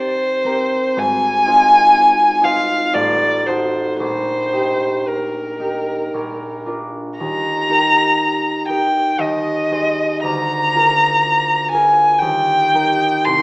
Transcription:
0.00 1.02 D#2 soft
0.00 0.43 C4 soft
0.00 1.38 D#4 soft
0.00 0.44 G4 soft
0.00 0.45 A#4 soft
0.00 1.00 C5 medium
0.44 4.03 C4 soft
0.44 1.02 G4 soft
0.44 1.02 A#4 soft
0.96 2.98 G#1 soft
0.96 2.46 G#5 medium
1.46 2.41 D#4 soft
1.46 2.42 F4 soft
1.46 2.42 C5 soft
2.42 3.46 D#4 soft
2.42 2.98 F4 soft
2.42 4.03 C5 soft
2.42 2.96 F5 medium
2.94 4.04 A1 soft
2.94 3.48 D5 medium
3.47 4.52 D#4 soft
3.47 4.05 F#4 soft
3.47 4.05 A4 soft
3.47 3.99 C5 soft
4.00 6.13 A#1 soft
4.00 5.09 C5 medium
4.53 5.58 D#4 soft
4.53 5.60 G4 soft
5.08 6.67 A#4 soft
5.60 6.17 D#4 soft
5.60 6.17 G4 soft
6.14 7.24 A#1 soft
6.66 7.23 D4 soft
6.66 7.23 F4 soft
6.66 7.69 A#4 soft
7.19 9.17 D#2 soft
7.19 8.66 A#5 medium
7.69 8.67 D#4 soft
7.69 8.68 G4 soft
7.69 8.69 A#4 soft
8.69 9.70 D#4 soft
8.69 9.24 G4 soft
8.69 9.24 A#4 soft
8.69 9.22 G5 medium
9.18 10.29 D#2 soft
9.18 10.23 D#5 medium
9.71 10.30 D#4 soft
9.71 10.75 G#4 soft
9.71 10.30 C5 soft
10.23 12.25 D2 soft
10.23 11.70 A#5 medium
10.75 11.72 F4 soft
10.75 11.72 G#4 soft
10.75 11.73 A#4 soft
11.71 12.26 F4 soft
11.71 12.26 G#4 soft
11.71 12.73 A#4 soft
11.71 12.21 G#5 medium
12.19 13.30 D#2 soft
12.19 13.26 G5 medium
12.74 13.42 D#4 soft
12.74 13.31 G4 soft
12.74 13.31 A#4 soft
13.25 13.42 C2 soft
13.25 13.42 C6 medium

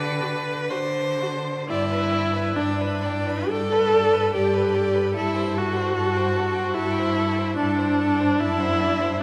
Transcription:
0.00 0.58 D3 medium
0.00 0.72 B4 medium
0.00 0.69 D5 medium
0.21 0.29 F#4 medium
0.70 1.58 D3 medium
0.70 0.78 F#4 medium
0.70 1.68 C5 medium
1.22 1.30 F#4 medium
1.68 2.46 G2 medium
1.68 2.58 E4 loud
1.68 1.93 D5 medium
1.68 1.93 G5 medium
1.91 2.15 B4 medium
1.91 2.13 B5 medium
2.12 2.37 D5 soft
2.12 2.35 G5 medium
2.34 2.57 B4 medium
2.34 2.55 B5 medium
2.56 3.38 G2 medium
2.56 3.51 D4 medium
2.56 2.83 D5 medium
2.56 2.82 G5 medium
2.81 3.05 B4 medium
2.81 3.07 B5 medium
3.03 3.29 D5 medium
3.03 3.30 G5 medium
3.27 3.49 B4 medium
3.27 3.50 B5 medium
3.49 4.24 G2 medium
3.49 4.35 A4 medium
3.49 3.74 D5 medium
3.49 3.73 G5 medium
3.72 3.95 B4 soft
3.72 3.95 B5 soft
3.93 4.15 D5 medium
3.93 4.13 G5 medium
4.12 4.32 B4 soft
4.12 4.32 B5 medium
4.33 5.07 G2 medium
4.33 5.16 G4 medium
4.33 4.56 D5 medium
4.33 4.55 G5 medium
4.54 4.76 B4 soft
4.54 4.76 B5 soft
4.74 4.96 D5 medium
4.74 4.97 G5 medium
4.94 5.13 B4 medium
4.94 5.14 B5 medium
5.13 5.87 G2 medium
5.13 5.59 E4 medium
5.13 5.37 A4 medium
5.13 5.36 A5 medium
5.34 5.56 C5 medium
5.34 5.55 G5 medium
5.54 5.78 A4 medium
5.54 5.74 A5 medium
5.58 6.76 F#4 medium
5.72 5.96 C5 medium
5.72 5.92 G5 soft
5.93 6.67 G2 medium
5.93 6.14 A5 medium
5.97 6.18 A4 medium
6.13 6.35 G5 medium
6.17 6.38 C5 medium
6.33 6.61 A4 medium
6.33 6.55 A5 medium
6.54 6.71 G5 soft
6.59 6.77 C5 soft
6.72 7.56 E4 medium
6.72 6.92 A5 medium
6.77 7.49 G2 medium
6.77 7.01 A4 medium
6.91 7.14 G5 medium
6.99 7.20 C5 medium
7.13 7.34 A5 medium
7.18 7.40 A4 medium
7.32 7.52 G5 soft
7.39 7.59 C5 soft
7.53 8.41 D4 medium
7.53 7.76 A5 medium
7.59 8.31 G2 medium
7.59 7.80 A4 medium
7.74 7.96 G5 medium
7.78 8.02 C5 soft
7.95 8.17 A5 medium
8.00 8.22 A4 medium
8.16 8.37 G5 soft
8.20 8.40 C5 soft
8.38 9.12 F#2 medium
8.38 9.22 E4 loud
8.38 8.62 D5 medium
8.38 8.59 A5 medium
8.58 8.82 C5 medium
8.58 8.81 F#5 medium
8.80 9.03 D5 medium
8.80 9.01 A5 medium
8.99 9.21 C5 medium
8.99 9.18 F#5 medium
9.19 9.23 A5 medium

